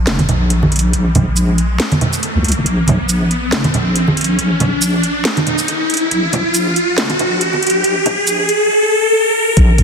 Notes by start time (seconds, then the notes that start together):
Already playing: riser
0.07 F1, snare, closed hi-hat
0.18 closed hi-hat, high conga
0.29 A#1, closed hi-hat, low conga
0.50 closed hi-hat
0.63 high conga
0.72 closed hi-hat
0.76 closed hi-hat
0.79 closed hi-hat
0.93 A#1, closed hi-hat
1.15 closed hi-hat, high conga, low conga
1.27 A#1
1.37 closed hi-hat, shaker
1.58 closed hi-hat
1.80 snare, closed hi-hat
1.92 closed hi-hat, high conga
2.01 closed hi-hat, low conga
2.13 shaker
2.23 closed hi-hat
2.35 C#2
2.44 C#2, closed hi-hat
2.48 closed hi-hat
2.52 closed hi-hat
2.56 F1
2.66 A#1, closed hi-hat
2.87 closed hi-hat, high conga, low conga
3.00 A#1
3.09 closed hi-hat, shaker
3.31 closed hi-hat
3.52 F1, snare, closed hi-hat
3.64 closed hi-hat, high conga
3.74 A#1, closed hi-hat, low conga
3.96 closed hi-hat
4.08 high conga
4.17 closed hi-hat
4.21 closed hi-hat
4.24 closed hi-hat
4.39 A#1, closed hi-hat
4.60 closed hi-hat, high conga, low conga
4.72 A#1
4.82 closed hi-hat, shaker
5.03 closed hi-hat
5.25 snare, closed hi-hat
5.37 closed hi-hat, high conga
5.47 closed hi-hat, low conga
5.59 shaker
5.68 closed hi-hat
5.90 closed hi-hat
5.94 closed hi-hat
5.97 closed hi-hat
6.11 A#1, closed hi-hat
6.32 closed hi-hat, high conga, low conga
6.45 A#1
6.54 closed hi-hat, shaker
6.76 closed hi-hat
6.98 F1, snare, closed hi-hat
7.09 closed hi-hat, high conga
7.19 A#1, closed hi-hat, low conga
7.41 closed hi-hat
7.53 high conga
7.63 closed hi-hat
7.67 closed hi-hat
7.70 closed hi-hat
7.84 A#1, closed hi-hat
8.06 closed hi-hat, high conga, low conga
8.18 A#1
8.27 closed hi-hat, shaker
8.49 closed hi-hat
9.57 A#1, kick, closed hi-hat
9.78 kick, closed hi-hat